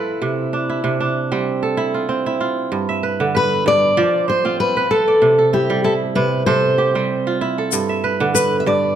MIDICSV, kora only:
0, 0, Header, 1, 2, 480
1, 0, Start_track
1, 0, Tempo, 626305
1, 164, Time_signature, 4, 2, 24, 8
1, 6862, End_track
2, 0, Start_track
2, 0, Title_t, "Kora"
2, 0, Program_c, 0, 46
2, 0, Note_on_c, 0, 53, 69
2, 0, Note_on_c, 0, 65, 55
2, 0, Note_on_c, 0, 69, 71
2, 0, Note_on_c, 0, 71, 52
2, 0, Note_on_c, 0, 74, 58
2, 166, Note_on_c, 0, 48, 70
2, 179, Note_off_c, 0, 74, 0
2, 202, Note_off_c, 0, 53, 0
2, 407, Note_on_c, 0, 62, 57
2, 533, Note_on_c, 0, 64, 59
2, 579, Note_off_c, 0, 65, 0
2, 633, Note_off_c, 0, 48, 0
2, 642, Note_on_c, 0, 48, 65
2, 688, Note_off_c, 0, 71, 0
2, 767, Note_off_c, 0, 62, 0
2, 770, Note_on_c, 0, 62, 57
2, 824, Note_off_c, 0, 69, 0
2, 1008, Note_on_c, 0, 60, 55
2, 1009, Note_on_c, 0, 55, 68
2, 1246, Note_on_c, 0, 69, 57
2, 1356, Note_off_c, 0, 64, 0
2, 1359, Note_on_c, 0, 64, 68
2, 1489, Note_on_c, 0, 65, 44
2, 1597, Note_off_c, 0, 60, 0
2, 1600, Note_on_c, 0, 60, 56
2, 1732, Note_off_c, 0, 64, 0
2, 1735, Note_on_c, 0, 64, 65
2, 1840, Note_off_c, 0, 65, 0
2, 1843, Note_on_c, 0, 65, 56
2, 2057, Note_off_c, 0, 62, 0
2, 2082, Note_on_c, 0, 43, 68
2, 2121, Note_off_c, 0, 48, 0
2, 2121, Note_off_c, 0, 55, 0
2, 2213, Note_on_c, 0, 76, 55
2, 2256, Note_off_c, 0, 69, 0
2, 2259, Note_off_c, 0, 65, 0
2, 2323, Note_on_c, 0, 71, 55
2, 2369, Note_off_c, 0, 60, 0
2, 2453, Note_on_c, 0, 50, 72
2, 2562, Note_off_c, 0, 71, 0
2, 2565, Note_on_c, 0, 71, 58
2, 2794, Note_off_c, 0, 43, 0
2, 2803, Note_on_c, 0, 43, 67
2, 2936, Note_off_c, 0, 64, 0
2, 3005, Note_off_c, 0, 76, 0
2, 3043, Note_on_c, 0, 53, 88
2, 3044, Note_on_c, 0, 74, 75
2, 3078, Note_off_c, 0, 43, 0
2, 3078, Note_off_c, 0, 50, 0
2, 3279, Note_on_c, 0, 72, 56
2, 3325, Note_off_c, 0, 71, 0
2, 3409, Note_on_c, 0, 60, 64
2, 3412, Note_on_c, 0, 65, 60
2, 3654, Note_on_c, 0, 71, 67
2, 3700, Note_off_c, 0, 60, 0
2, 3700, Note_off_c, 0, 72, 0
2, 3761, Note_on_c, 0, 69, 70
2, 3888, Note_off_c, 0, 74, 0
2, 3891, Note_on_c, 0, 74, 57
2, 3998, Note_on_c, 0, 48, 68
2, 4036, Note_off_c, 0, 53, 0
2, 4044, Note_off_c, 0, 71, 0
2, 4124, Note_off_c, 0, 69, 0
2, 4127, Note_on_c, 0, 69, 57
2, 4239, Note_on_c, 0, 64, 70
2, 4285, Note_off_c, 0, 65, 0
2, 4367, Note_on_c, 0, 55, 83
2, 4478, Note_off_c, 0, 64, 0
2, 4481, Note_on_c, 0, 64, 69
2, 4711, Note_off_c, 0, 48, 0
2, 4720, Note_on_c, 0, 48, 73
2, 4740, Note_off_c, 0, 74, 0
2, 4950, Note_off_c, 0, 48, 0
2, 4958, Note_off_c, 0, 69, 0
2, 4959, Note_on_c, 0, 48, 77
2, 4961, Note_on_c, 0, 69, 71
2, 5197, Note_on_c, 0, 67, 64
2, 5319, Note_off_c, 0, 55, 0
2, 5327, Note_on_c, 0, 55, 65
2, 5329, Note_on_c, 0, 60, 54
2, 5570, Note_on_c, 0, 65, 59
2, 5616, Note_off_c, 0, 64, 0
2, 5681, Note_on_c, 0, 64, 71
2, 5808, Note_off_c, 0, 69, 0
2, 5811, Note_on_c, 0, 69, 66
2, 5922, Note_on_c, 0, 43, 69
2, 5957, Note_off_c, 0, 48, 0
2, 5957, Note_off_c, 0, 55, 0
2, 6049, Note_on_c, 0, 76, 55
2, 6095, Note_off_c, 0, 65, 0
2, 6160, Note_on_c, 0, 71, 66
2, 6206, Note_off_c, 0, 60, 0
2, 6279, Note_off_c, 0, 67, 0
2, 6287, Note_on_c, 0, 50, 81
2, 6395, Note_off_c, 0, 71, 0
2, 6398, Note_on_c, 0, 71, 59
2, 6631, Note_off_c, 0, 43, 0
2, 6640, Note_on_c, 0, 43, 77
2, 6821, Note_off_c, 0, 69, 0
2, 6841, Note_off_c, 0, 76, 0
2, 6862, Note_off_c, 0, 43, 0
2, 6862, Note_off_c, 0, 50, 0
2, 6862, Note_off_c, 0, 64, 0
2, 6862, Note_off_c, 0, 71, 0
2, 6862, End_track
0, 0, End_of_file